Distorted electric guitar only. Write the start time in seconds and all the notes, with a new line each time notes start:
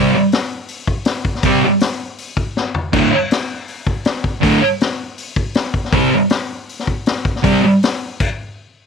Already playing: C4
1.45 C3 G3 C4
2.93 D2 A2 D3
4.41 D2 A2 D3
5.93 C3 G3 C4
7.43 C3 G3 C4